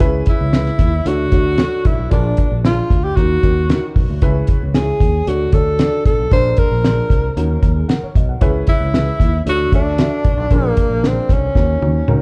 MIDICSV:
0, 0, Header, 1, 6, 480
1, 0, Start_track
1, 0, Tempo, 524934
1, 14, Time_signature, 4, 2, 24, 8
1, 11173, End_track
2, 0, Start_track
2, 0, Title_t, "Tenor saxophone"
2, 0, Program_c, 0, 66
2, 274, Note_on_c, 0, 64, 87
2, 988, Note_on_c, 0, 66, 99
2, 1002, Note_off_c, 0, 64, 0
2, 1712, Note_on_c, 0, 64, 82
2, 1726, Note_off_c, 0, 66, 0
2, 1938, Note_off_c, 0, 64, 0
2, 1943, Note_on_c, 0, 62, 89
2, 2387, Note_off_c, 0, 62, 0
2, 2433, Note_on_c, 0, 65, 89
2, 2784, Note_on_c, 0, 67, 94
2, 2797, Note_off_c, 0, 65, 0
2, 2893, Note_on_c, 0, 66, 101
2, 2907, Note_off_c, 0, 67, 0
2, 3616, Note_off_c, 0, 66, 0
2, 4341, Note_on_c, 0, 68, 80
2, 4829, Note_on_c, 0, 66, 84
2, 4843, Note_off_c, 0, 68, 0
2, 5064, Note_on_c, 0, 69, 91
2, 5078, Note_off_c, 0, 66, 0
2, 5536, Note_off_c, 0, 69, 0
2, 5541, Note_on_c, 0, 69, 80
2, 5763, Note_off_c, 0, 69, 0
2, 5788, Note_on_c, 0, 72, 100
2, 6025, Note_on_c, 0, 70, 87
2, 6039, Note_off_c, 0, 72, 0
2, 6741, Note_off_c, 0, 70, 0
2, 7942, Note_on_c, 0, 64, 91
2, 8622, Note_off_c, 0, 64, 0
2, 8681, Note_on_c, 0, 66, 109
2, 8892, Note_off_c, 0, 66, 0
2, 8919, Note_on_c, 0, 62, 96
2, 9639, Note_on_c, 0, 58, 93
2, 9652, Note_off_c, 0, 62, 0
2, 10120, Note_on_c, 0, 60, 81
2, 10134, Note_off_c, 0, 58, 0
2, 10363, Note_on_c, 0, 61, 77
2, 10376, Note_off_c, 0, 60, 0
2, 11173, Note_off_c, 0, 61, 0
2, 11173, End_track
3, 0, Start_track
3, 0, Title_t, "Upright piano"
3, 0, Program_c, 1, 0
3, 0, Note_on_c, 1, 49, 73
3, 0, Note_on_c, 1, 61, 105
3, 0, Note_on_c, 1, 64, 103
3, 0, Note_on_c, 1, 68, 95
3, 3, Note_on_c, 1, 71, 123
3, 359, Note_off_c, 1, 61, 0
3, 362, Note_off_c, 1, 64, 0
3, 363, Note_off_c, 1, 68, 0
3, 365, Note_off_c, 1, 71, 0
3, 479, Note_on_c, 1, 61, 67
3, 479, Note_on_c, 1, 64, 64
3, 484, Note_on_c, 1, 68, 64
3, 484, Note_on_c, 1, 71, 75
3, 689, Note_off_c, 1, 49, 0
3, 844, Note_off_c, 1, 61, 0
3, 844, Note_off_c, 1, 64, 0
3, 846, Note_off_c, 1, 68, 0
3, 846, Note_off_c, 1, 71, 0
3, 966, Note_on_c, 1, 50, 60
3, 966, Note_on_c, 1, 62, 68
3, 966, Note_on_c, 1, 66, 62
3, 970, Note_on_c, 1, 69, 62
3, 972, Note_on_c, 1, 73, 77
3, 1149, Note_off_c, 1, 62, 0
3, 1149, Note_off_c, 1, 66, 0
3, 1151, Note_off_c, 1, 69, 0
3, 1152, Note_off_c, 1, 73, 0
3, 1202, Note_on_c, 1, 62, 65
3, 1207, Note_on_c, 1, 66, 59
3, 1208, Note_on_c, 1, 69, 60
3, 1214, Note_on_c, 1, 73, 73
3, 1387, Note_off_c, 1, 62, 0
3, 1390, Note_off_c, 1, 66, 0
3, 1390, Note_off_c, 1, 69, 0
3, 1393, Note_off_c, 1, 73, 0
3, 1442, Note_on_c, 1, 62, 69
3, 1444, Note_on_c, 1, 66, 68
3, 1445, Note_on_c, 1, 69, 64
3, 1452, Note_on_c, 1, 73, 81
3, 1656, Note_off_c, 1, 50, 0
3, 1806, Note_off_c, 1, 62, 0
3, 1806, Note_off_c, 1, 66, 0
3, 1807, Note_off_c, 1, 69, 0
3, 1811, Note_off_c, 1, 73, 0
3, 1922, Note_on_c, 1, 62, 85
3, 1925, Note_on_c, 1, 46, 61
3, 1928, Note_on_c, 1, 65, 76
3, 1928, Note_on_c, 1, 68, 77
3, 1931, Note_on_c, 1, 70, 94
3, 2286, Note_off_c, 1, 62, 0
3, 2289, Note_off_c, 1, 65, 0
3, 2289, Note_off_c, 1, 68, 0
3, 2290, Note_off_c, 1, 70, 0
3, 2412, Note_on_c, 1, 62, 62
3, 2414, Note_on_c, 1, 65, 61
3, 2416, Note_on_c, 1, 68, 62
3, 2420, Note_on_c, 1, 72, 73
3, 2615, Note_off_c, 1, 46, 0
3, 2771, Note_off_c, 1, 62, 0
3, 2772, Note_off_c, 1, 65, 0
3, 2773, Note_off_c, 1, 68, 0
3, 2775, Note_off_c, 1, 72, 0
3, 2894, Note_on_c, 1, 61, 62
3, 2900, Note_on_c, 1, 63, 58
3, 2901, Note_on_c, 1, 66, 57
3, 2902, Note_on_c, 1, 51, 59
3, 2905, Note_on_c, 1, 70, 73
3, 3074, Note_off_c, 1, 61, 0
3, 3077, Note_off_c, 1, 63, 0
3, 3078, Note_off_c, 1, 66, 0
3, 3080, Note_off_c, 1, 70, 0
3, 3138, Note_on_c, 1, 61, 66
3, 3139, Note_on_c, 1, 63, 59
3, 3143, Note_on_c, 1, 66, 59
3, 3146, Note_on_c, 1, 70, 72
3, 3316, Note_off_c, 1, 61, 0
3, 3317, Note_off_c, 1, 63, 0
3, 3319, Note_off_c, 1, 66, 0
3, 3320, Note_off_c, 1, 70, 0
3, 3372, Note_on_c, 1, 61, 69
3, 3373, Note_on_c, 1, 63, 64
3, 3383, Note_on_c, 1, 64, 52
3, 3387, Note_on_c, 1, 70, 79
3, 3438, Note_off_c, 1, 64, 0
3, 3438, Note_on_c, 1, 66, 63
3, 3584, Note_off_c, 1, 51, 0
3, 3731, Note_off_c, 1, 61, 0
3, 3732, Note_off_c, 1, 63, 0
3, 3739, Note_off_c, 1, 70, 0
3, 3764, Note_off_c, 1, 66, 0
3, 3859, Note_on_c, 1, 61, 103
3, 3860, Note_on_c, 1, 64, 94
3, 3865, Note_on_c, 1, 49, 68
3, 3866, Note_on_c, 1, 68, 89
3, 3869, Note_on_c, 1, 71, 118
3, 4214, Note_off_c, 1, 61, 0
3, 4215, Note_off_c, 1, 64, 0
3, 4218, Note_off_c, 1, 68, 0
3, 4219, Note_off_c, 1, 71, 0
3, 4341, Note_on_c, 1, 68, 63
3, 4342, Note_on_c, 1, 61, 68
3, 4342, Note_on_c, 1, 63, 46
3, 4347, Note_on_c, 1, 73, 73
3, 4398, Note_off_c, 1, 63, 0
3, 4400, Note_on_c, 1, 64, 61
3, 4545, Note_off_c, 1, 49, 0
3, 4696, Note_off_c, 1, 61, 0
3, 4696, Note_off_c, 1, 68, 0
3, 4699, Note_off_c, 1, 73, 0
3, 4725, Note_off_c, 1, 64, 0
3, 4818, Note_on_c, 1, 62, 67
3, 4820, Note_on_c, 1, 66, 59
3, 4821, Note_on_c, 1, 50, 60
3, 4823, Note_on_c, 1, 73, 70
3, 4825, Note_on_c, 1, 69, 60
3, 4996, Note_off_c, 1, 62, 0
3, 4997, Note_off_c, 1, 66, 0
3, 4999, Note_off_c, 1, 73, 0
3, 5000, Note_off_c, 1, 69, 0
3, 5063, Note_on_c, 1, 62, 65
3, 5066, Note_on_c, 1, 66, 56
3, 5072, Note_on_c, 1, 69, 58
3, 5072, Note_on_c, 1, 73, 69
3, 5239, Note_off_c, 1, 62, 0
3, 5240, Note_off_c, 1, 66, 0
3, 5243, Note_off_c, 1, 69, 0
3, 5243, Note_off_c, 1, 73, 0
3, 5297, Note_on_c, 1, 62, 73
3, 5301, Note_on_c, 1, 66, 66
3, 5303, Note_on_c, 1, 69, 65
3, 5306, Note_on_c, 1, 74, 85
3, 5503, Note_off_c, 1, 50, 0
3, 5653, Note_off_c, 1, 62, 0
3, 5655, Note_off_c, 1, 66, 0
3, 5656, Note_off_c, 1, 69, 0
3, 5658, Note_off_c, 1, 74, 0
3, 5779, Note_on_c, 1, 62, 92
3, 5782, Note_on_c, 1, 65, 75
3, 5783, Note_on_c, 1, 46, 64
3, 5784, Note_on_c, 1, 70, 96
3, 5785, Note_on_c, 1, 68, 76
3, 6134, Note_off_c, 1, 62, 0
3, 6135, Note_off_c, 1, 65, 0
3, 6137, Note_off_c, 1, 68, 0
3, 6137, Note_off_c, 1, 70, 0
3, 6259, Note_on_c, 1, 62, 66
3, 6261, Note_on_c, 1, 65, 62
3, 6263, Note_on_c, 1, 68, 61
3, 6267, Note_on_c, 1, 72, 74
3, 6463, Note_off_c, 1, 46, 0
3, 6614, Note_off_c, 1, 62, 0
3, 6615, Note_off_c, 1, 65, 0
3, 6616, Note_off_c, 1, 68, 0
3, 6618, Note_off_c, 1, 72, 0
3, 6737, Note_on_c, 1, 61, 86
3, 6739, Note_on_c, 1, 63, 74
3, 6740, Note_on_c, 1, 51, 72
3, 6744, Note_on_c, 1, 66, 68
3, 6747, Note_on_c, 1, 70, 86
3, 6915, Note_off_c, 1, 61, 0
3, 6916, Note_off_c, 1, 63, 0
3, 6918, Note_off_c, 1, 66, 0
3, 6920, Note_off_c, 1, 70, 0
3, 6970, Note_on_c, 1, 82, 68
3, 7095, Note_on_c, 1, 68, 55
3, 7196, Note_off_c, 1, 82, 0
3, 7210, Note_off_c, 1, 68, 0
3, 7210, Note_on_c, 1, 78, 69
3, 7211, Note_on_c, 1, 70, 68
3, 7328, Note_off_c, 1, 70, 0
3, 7346, Note_on_c, 1, 73, 69
3, 7421, Note_off_c, 1, 51, 0
3, 7455, Note_off_c, 1, 73, 0
3, 7461, Note_on_c, 1, 75, 68
3, 7566, Note_off_c, 1, 78, 0
3, 7573, Note_off_c, 1, 75, 0
3, 7579, Note_on_c, 1, 78, 57
3, 7689, Note_on_c, 1, 61, 109
3, 7691, Note_on_c, 1, 64, 102
3, 7692, Note_on_c, 1, 49, 75
3, 7696, Note_on_c, 1, 68, 98
3, 7698, Note_on_c, 1, 71, 118
3, 7806, Note_off_c, 1, 78, 0
3, 8048, Note_off_c, 1, 61, 0
3, 8049, Note_off_c, 1, 64, 0
3, 8052, Note_off_c, 1, 68, 0
3, 8053, Note_off_c, 1, 71, 0
3, 8170, Note_on_c, 1, 61, 67
3, 8172, Note_on_c, 1, 64, 67
3, 8173, Note_on_c, 1, 68, 58
3, 8173, Note_on_c, 1, 71, 81
3, 8377, Note_off_c, 1, 49, 0
3, 8529, Note_off_c, 1, 61, 0
3, 8529, Note_off_c, 1, 64, 0
3, 8530, Note_off_c, 1, 68, 0
3, 8530, Note_off_c, 1, 71, 0
3, 8650, Note_on_c, 1, 62, 65
3, 8652, Note_on_c, 1, 50, 61
3, 8653, Note_on_c, 1, 66, 58
3, 8655, Note_on_c, 1, 69, 64
3, 8661, Note_on_c, 1, 73, 76
3, 8830, Note_off_c, 1, 62, 0
3, 8832, Note_off_c, 1, 66, 0
3, 8833, Note_off_c, 1, 69, 0
3, 8836, Note_off_c, 1, 73, 0
3, 8894, Note_on_c, 1, 62, 68
3, 8896, Note_on_c, 1, 66, 59
3, 8902, Note_on_c, 1, 76, 76
3, 8906, Note_on_c, 1, 69, 57
3, 9072, Note_off_c, 1, 62, 0
3, 9073, Note_off_c, 1, 66, 0
3, 9076, Note_off_c, 1, 76, 0
3, 9078, Note_off_c, 1, 69, 0
3, 9128, Note_on_c, 1, 62, 71
3, 9135, Note_on_c, 1, 66, 71
3, 9140, Note_on_c, 1, 69, 67
3, 9141, Note_on_c, 1, 76, 81
3, 9336, Note_off_c, 1, 50, 0
3, 9487, Note_off_c, 1, 62, 0
3, 9490, Note_off_c, 1, 66, 0
3, 9492, Note_off_c, 1, 69, 0
3, 9493, Note_off_c, 1, 76, 0
3, 9611, Note_on_c, 1, 62, 88
3, 9616, Note_on_c, 1, 46, 57
3, 9616, Note_on_c, 1, 65, 80
3, 9616, Note_on_c, 1, 68, 84
3, 9618, Note_on_c, 1, 70, 95
3, 9968, Note_off_c, 1, 62, 0
3, 9970, Note_off_c, 1, 65, 0
3, 9970, Note_off_c, 1, 68, 0
3, 9971, Note_off_c, 1, 70, 0
3, 10075, Note_on_c, 1, 62, 70
3, 10080, Note_on_c, 1, 68, 61
3, 10081, Note_on_c, 1, 65, 62
3, 10089, Note_on_c, 1, 70, 73
3, 10297, Note_off_c, 1, 46, 0
3, 10439, Note_off_c, 1, 62, 0
3, 10441, Note_off_c, 1, 68, 0
3, 10442, Note_off_c, 1, 65, 0
3, 10446, Note_off_c, 1, 70, 0
3, 10562, Note_on_c, 1, 61, 65
3, 10566, Note_on_c, 1, 51, 53
3, 10567, Note_on_c, 1, 63, 62
3, 10569, Note_on_c, 1, 66, 59
3, 10571, Note_on_c, 1, 70, 67
3, 10744, Note_off_c, 1, 61, 0
3, 10747, Note_off_c, 1, 63, 0
3, 10747, Note_off_c, 1, 66, 0
3, 10748, Note_off_c, 1, 70, 0
3, 10804, Note_on_c, 1, 61, 63
3, 10808, Note_on_c, 1, 63, 61
3, 10813, Note_on_c, 1, 66, 58
3, 10816, Note_on_c, 1, 73, 65
3, 10985, Note_off_c, 1, 61, 0
3, 10987, Note_off_c, 1, 63, 0
3, 10989, Note_off_c, 1, 66, 0
3, 10991, Note_off_c, 1, 73, 0
3, 11042, Note_on_c, 1, 61, 80
3, 11048, Note_on_c, 1, 63, 80
3, 11053, Note_on_c, 1, 66, 74
3, 11055, Note_on_c, 1, 70, 94
3, 11173, Note_off_c, 1, 51, 0
3, 11173, Note_off_c, 1, 61, 0
3, 11173, Note_off_c, 1, 63, 0
3, 11173, Note_off_c, 1, 66, 0
3, 11173, Note_off_c, 1, 70, 0
3, 11173, End_track
4, 0, Start_track
4, 0, Title_t, "Fingered electric bass"
4, 0, Program_c, 2, 33
4, 7, Note_on_c, 2, 37, 92
4, 186, Note_off_c, 2, 37, 0
4, 373, Note_on_c, 2, 37, 80
4, 637, Note_off_c, 2, 37, 0
4, 725, Note_on_c, 2, 39, 80
4, 904, Note_off_c, 2, 39, 0
4, 967, Note_on_c, 2, 38, 92
4, 1146, Note_off_c, 2, 38, 0
4, 1213, Note_on_c, 2, 38, 83
4, 1478, Note_off_c, 2, 38, 0
4, 1694, Note_on_c, 2, 35, 82
4, 1783, Note_off_c, 2, 35, 0
4, 1820, Note_on_c, 2, 35, 88
4, 1907, Note_off_c, 2, 35, 0
4, 1939, Note_on_c, 2, 34, 98
4, 2114, Note_off_c, 2, 34, 0
4, 2300, Note_on_c, 2, 34, 78
4, 2563, Note_off_c, 2, 34, 0
4, 2659, Note_on_c, 2, 38, 83
4, 2834, Note_off_c, 2, 38, 0
4, 2899, Note_on_c, 2, 39, 96
4, 3074, Note_off_c, 2, 39, 0
4, 3141, Note_on_c, 2, 39, 78
4, 3403, Note_off_c, 2, 39, 0
4, 3620, Note_on_c, 2, 35, 80
4, 3707, Note_off_c, 2, 35, 0
4, 3747, Note_on_c, 2, 38, 84
4, 3832, Note_off_c, 2, 38, 0
4, 3861, Note_on_c, 2, 37, 88
4, 4036, Note_off_c, 2, 37, 0
4, 4232, Note_on_c, 2, 37, 77
4, 4491, Note_off_c, 2, 37, 0
4, 4577, Note_on_c, 2, 39, 76
4, 4753, Note_off_c, 2, 39, 0
4, 4820, Note_on_c, 2, 38, 82
4, 4995, Note_off_c, 2, 38, 0
4, 5054, Note_on_c, 2, 38, 75
4, 5319, Note_off_c, 2, 38, 0
4, 5536, Note_on_c, 2, 35, 81
4, 5625, Note_off_c, 2, 35, 0
4, 5660, Note_on_c, 2, 35, 94
4, 5747, Note_off_c, 2, 35, 0
4, 5778, Note_on_c, 2, 34, 95
4, 5953, Note_off_c, 2, 34, 0
4, 6140, Note_on_c, 2, 34, 91
4, 6403, Note_off_c, 2, 34, 0
4, 6492, Note_on_c, 2, 36, 86
4, 6670, Note_off_c, 2, 36, 0
4, 6735, Note_on_c, 2, 39, 89
4, 6911, Note_off_c, 2, 39, 0
4, 6976, Note_on_c, 2, 39, 88
4, 7152, Note_off_c, 2, 39, 0
4, 7458, Note_on_c, 2, 35, 90
4, 7633, Note_off_c, 2, 35, 0
4, 7697, Note_on_c, 2, 37, 102
4, 7872, Note_off_c, 2, 37, 0
4, 8053, Note_on_c, 2, 37, 77
4, 8317, Note_off_c, 2, 37, 0
4, 8412, Note_on_c, 2, 39, 80
4, 8589, Note_off_c, 2, 39, 0
4, 8651, Note_on_c, 2, 38, 91
4, 8828, Note_off_c, 2, 38, 0
4, 8889, Note_on_c, 2, 38, 81
4, 9154, Note_off_c, 2, 38, 0
4, 9370, Note_on_c, 2, 35, 84
4, 9459, Note_off_c, 2, 35, 0
4, 9486, Note_on_c, 2, 35, 91
4, 9576, Note_off_c, 2, 35, 0
4, 9611, Note_on_c, 2, 34, 93
4, 9787, Note_off_c, 2, 34, 0
4, 9962, Note_on_c, 2, 34, 77
4, 10229, Note_off_c, 2, 34, 0
4, 10328, Note_on_c, 2, 36, 86
4, 10505, Note_off_c, 2, 36, 0
4, 10567, Note_on_c, 2, 39, 100
4, 10744, Note_off_c, 2, 39, 0
4, 10807, Note_on_c, 2, 39, 79
4, 10984, Note_off_c, 2, 39, 0
4, 11050, Note_on_c, 2, 37, 80
4, 11137, Note_off_c, 2, 37, 0
4, 11173, End_track
5, 0, Start_track
5, 0, Title_t, "Muted fingered electric bass strokes"
5, 7344, Note_on_c, 9, 29, 44
5, 7436, Note_off_c, 9, 29, 0
5, 11173, End_track
6, 0, Start_track
6, 0, Title_t, "Drums"
6, 1, Note_on_c, 9, 42, 83
6, 5, Note_on_c, 9, 36, 94
6, 92, Note_off_c, 9, 42, 0
6, 97, Note_off_c, 9, 36, 0
6, 235, Note_on_c, 9, 42, 70
6, 247, Note_on_c, 9, 36, 83
6, 327, Note_off_c, 9, 42, 0
6, 339, Note_off_c, 9, 36, 0
6, 485, Note_on_c, 9, 38, 104
6, 487, Note_on_c, 9, 42, 87
6, 577, Note_off_c, 9, 38, 0
6, 579, Note_off_c, 9, 42, 0
6, 607, Note_on_c, 9, 38, 32
6, 698, Note_off_c, 9, 38, 0
6, 715, Note_on_c, 9, 38, 31
6, 721, Note_on_c, 9, 42, 73
6, 723, Note_on_c, 9, 36, 84
6, 807, Note_off_c, 9, 38, 0
6, 813, Note_off_c, 9, 42, 0
6, 815, Note_off_c, 9, 36, 0
6, 968, Note_on_c, 9, 42, 77
6, 1060, Note_off_c, 9, 42, 0
6, 1206, Note_on_c, 9, 42, 62
6, 1210, Note_on_c, 9, 36, 84
6, 1298, Note_off_c, 9, 42, 0
6, 1301, Note_off_c, 9, 36, 0
6, 1443, Note_on_c, 9, 42, 82
6, 1448, Note_on_c, 9, 38, 106
6, 1534, Note_off_c, 9, 42, 0
6, 1539, Note_off_c, 9, 38, 0
6, 1690, Note_on_c, 9, 42, 60
6, 1694, Note_on_c, 9, 36, 83
6, 1782, Note_off_c, 9, 42, 0
6, 1786, Note_off_c, 9, 36, 0
6, 1932, Note_on_c, 9, 42, 83
6, 1936, Note_on_c, 9, 36, 95
6, 2023, Note_off_c, 9, 42, 0
6, 2027, Note_off_c, 9, 36, 0
6, 2167, Note_on_c, 9, 42, 67
6, 2179, Note_on_c, 9, 36, 84
6, 2259, Note_off_c, 9, 42, 0
6, 2271, Note_off_c, 9, 36, 0
6, 2420, Note_on_c, 9, 38, 108
6, 2422, Note_on_c, 9, 42, 79
6, 2512, Note_off_c, 9, 38, 0
6, 2514, Note_off_c, 9, 42, 0
6, 2656, Note_on_c, 9, 36, 88
6, 2661, Note_on_c, 9, 42, 71
6, 2747, Note_off_c, 9, 36, 0
6, 2752, Note_off_c, 9, 42, 0
6, 2898, Note_on_c, 9, 36, 86
6, 2901, Note_on_c, 9, 42, 73
6, 2989, Note_off_c, 9, 36, 0
6, 2992, Note_off_c, 9, 42, 0
6, 3139, Note_on_c, 9, 36, 83
6, 3140, Note_on_c, 9, 42, 68
6, 3231, Note_off_c, 9, 36, 0
6, 3231, Note_off_c, 9, 42, 0
6, 3379, Note_on_c, 9, 42, 83
6, 3384, Note_on_c, 9, 38, 107
6, 3471, Note_off_c, 9, 42, 0
6, 3476, Note_off_c, 9, 38, 0
6, 3619, Note_on_c, 9, 46, 40
6, 3620, Note_on_c, 9, 36, 83
6, 3711, Note_off_c, 9, 36, 0
6, 3711, Note_off_c, 9, 46, 0
6, 3856, Note_on_c, 9, 42, 82
6, 3860, Note_on_c, 9, 36, 100
6, 3947, Note_off_c, 9, 42, 0
6, 3952, Note_off_c, 9, 36, 0
6, 4089, Note_on_c, 9, 42, 65
6, 4101, Note_on_c, 9, 36, 85
6, 4181, Note_off_c, 9, 42, 0
6, 4193, Note_off_c, 9, 36, 0
6, 4338, Note_on_c, 9, 38, 104
6, 4340, Note_on_c, 9, 42, 83
6, 4430, Note_off_c, 9, 38, 0
6, 4431, Note_off_c, 9, 42, 0
6, 4575, Note_on_c, 9, 36, 81
6, 4580, Note_on_c, 9, 42, 74
6, 4667, Note_off_c, 9, 36, 0
6, 4671, Note_off_c, 9, 42, 0
6, 4821, Note_on_c, 9, 42, 78
6, 4912, Note_off_c, 9, 42, 0
6, 5051, Note_on_c, 9, 42, 69
6, 5055, Note_on_c, 9, 36, 85
6, 5142, Note_off_c, 9, 42, 0
6, 5147, Note_off_c, 9, 36, 0
6, 5294, Note_on_c, 9, 42, 86
6, 5299, Note_on_c, 9, 38, 103
6, 5385, Note_off_c, 9, 42, 0
6, 5390, Note_off_c, 9, 38, 0
6, 5537, Note_on_c, 9, 36, 85
6, 5537, Note_on_c, 9, 42, 61
6, 5628, Note_off_c, 9, 36, 0
6, 5628, Note_off_c, 9, 42, 0
6, 5774, Note_on_c, 9, 42, 83
6, 5775, Note_on_c, 9, 36, 99
6, 5865, Note_off_c, 9, 42, 0
6, 5867, Note_off_c, 9, 36, 0
6, 6005, Note_on_c, 9, 42, 63
6, 6017, Note_on_c, 9, 36, 85
6, 6096, Note_off_c, 9, 42, 0
6, 6109, Note_off_c, 9, 36, 0
6, 6259, Note_on_c, 9, 38, 104
6, 6261, Note_on_c, 9, 42, 77
6, 6351, Note_off_c, 9, 38, 0
6, 6353, Note_off_c, 9, 42, 0
6, 6493, Note_on_c, 9, 36, 82
6, 6502, Note_on_c, 9, 42, 74
6, 6585, Note_off_c, 9, 36, 0
6, 6593, Note_off_c, 9, 42, 0
6, 6740, Note_on_c, 9, 42, 80
6, 6831, Note_off_c, 9, 42, 0
6, 6974, Note_on_c, 9, 36, 84
6, 6974, Note_on_c, 9, 42, 67
6, 7065, Note_off_c, 9, 36, 0
6, 7065, Note_off_c, 9, 42, 0
6, 7216, Note_on_c, 9, 42, 81
6, 7221, Note_on_c, 9, 38, 104
6, 7307, Note_off_c, 9, 42, 0
6, 7312, Note_off_c, 9, 38, 0
6, 7456, Note_on_c, 9, 36, 82
6, 7460, Note_on_c, 9, 42, 59
6, 7548, Note_off_c, 9, 36, 0
6, 7551, Note_off_c, 9, 42, 0
6, 7692, Note_on_c, 9, 42, 83
6, 7695, Note_on_c, 9, 36, 98
6, 7783, Note_off_c, 9, 42, 0
6, 7786, Note_off_c, 9, 36, 0
6, 7926, Note_on_c, 9, 42, 73
6, 7935, Note_on_c, 9, 36, 88
6, 8018, Note_off_c, 9, 42, 0
6, 8026, Note_off_c, 9, 36, 0
6, 8177, Note_on_c, 9, 38, 108
6, 8178, Note_on_c, 9, 42, 79
6, 8268, Note_off_c, 9, 38, 0
6, 8270, Note_off_c, 9, 42, 0
6, 8411, Note_on_c, 9, 36, 87
6, 8419, Note_on_c, 9, 42, 74
6, 8503, Note_off_c, 9, 36, 0
6, 8511, Note_off_c, 9, 42, 0
6, 8656, Note_on_c, 9, 42, 76
6, 8748, Note_off_c, 9, 42, 0
6, 8891, Note_on_c, 9, 36, 84
6, 8892, Note_on_c, 9, 42, 67
6, 8982, Note_off_c, 9, 36, 0
6, 8983, Note_off_c, 9, 42, 0
6, 9129, Note_on_c, 9, 42, 90
6, 9134, Note_on_c, 9, 38, 103
6, 9220, Note_off_c, 9, 42, 0
6, 9225, Note_off_c, 9, 38, 0
6, 9368, Note_on_c, 9, 42, 60
6, 9370, Note_on_c, 9, 36, 85
6, 9460, Note_off_c, 9, 42, 0
6, 9462, Note_off_c, 9, 36, 0
6, 9607, Note_on_c, 9, 42, 80
6, 9609, Note_on_c, 9, 36, 98
6, 9698, Note_off_c, 9, 42, 0
6, 9701, Note_off_c, 9, 36, 0
6, 9847, Note_on_c, 9, 42, 69
6, 9852, Note_on_c, 9, 36, 85
6, 9938, Note_off_c, 9, 42, 0
6, 9943, Note_off_c, 9, 36, 0
6, 10095, Note_on_c, 9, 38, 102
6, 10097, Note_on_c, 9, 42, 84
6, 10186, Note_off_c, 9, 38, 0
6, 10188, Note_off_c, 9, 42, 0
6, 10326, Note_on_c, 9, 36, 85
6, 10326, Note_on_c, 9, 38, 32
6, 10332, Note_on_c, 9, 42, 72
6, 10417, Note_off_c, 9, 36, 0
6, 10418, Note_off_c, 9, 38, 0
6, 10424, Note_off_c, 9, 42, 0
6, 10564, Note_on_c, 9, 36, 86
6, 10571, Note_on_c, 9, 38, 49
6, 10656, Note_off_c, 9, 36, 0
6, 10663, Note_off_c, 9, 38, 0
6, 10812, Note_on_c, 9, 48, 65
6, 10903, Note_off_c, 9, 48, 0
6, 11046, Note_on_c, 9, 47, 77
6, 11138, Note_off_c, 9, 47, 0
6, 11173, End_track
0, 0, End_of_file